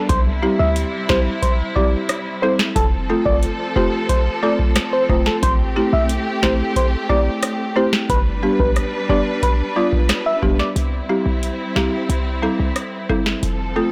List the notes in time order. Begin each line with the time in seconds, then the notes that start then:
Already playing: G3
0.09 C2 C3 E4 C5, kick, closed hi-hat
0.42 G3 C4 E4 G4
0.59 D2 E5
0.76 closed hi-hat
1.09 C2 G3 C4 E4 G4 C5, kick, snare
1.42 C5, kick, closed hi-hat
1.76 G3 C4 E4 G4 D5, kick
2.09 cross-stick, closed hi-hat
2.42 G3 C4 E4 A4 C5
2.59 snare
2.76 F1 F3 C4 A4, kick, closed hi-hat
3.09 A3 C4 F4 A4
3.25 G1 D5, kick
3.43 closed hi-hat
3.76 F1 A3 C4 F4 G4 C5
4.09 C5, kick, closed hi-hat
4.43 A3 C4 F4 A4 D5
4.59 kick
4.76 cross-stick, snare, closed hi-hat
4.93 C5
5.09 E1 A3 C4 F4 C5, kick
5.26 A4, snare
5.43 A1 A3 G4 C5, kick, closed hi-hat
5.76 A3 C4 E4 G4
5.93 B1 E5
6.09 closed hi-hat
6.43 A1 A3 C4 E4 G4 C5, kick, snare
6.76 C5, kick, closed hi-hat
7.09 A3 C4 E4 G4 D5, kick
7.43 cross-stick, closed hi-hat
7.76 A3 C4 E4 G4 C5
7.93 snare
8.10 G1 G3 D4 B4, kick, closed hi-hat
8.43 G3 B3 D4 G4
8.59 A1 B4, kick
8.76 cross-stick, closed hi-hat
9.09 G1 G3 B3 D4 G4 D5
9.43 B4, kick, closed hi-hat
9.76 G3 B3 D4 F4 D5
9.93 kick
10.09 cross-stick, snare, closed hi-hat
10.26 E5
10.42 F1 G3 B3 D4 G4, kick
10.59 D5, snare
10.76 C2 G3 C4 E4, closed hi-hat
11.09 G3 C4 E4 G4
11.26 B1
11.43 closed hi-hat
11.76 C2 G3 C4 E4 G4, snare
12.09 C2, closed hi-hat
12.42 G3 C4 E4 A4
12.60 C2
12.76 cross-stick, closed hi-hat
13.09 G1 G3 C4 E4 A4
13.26 snare
13.43 F1 F3 C4 A4, closed hi-hat
13.76 A3 C4 F4 A4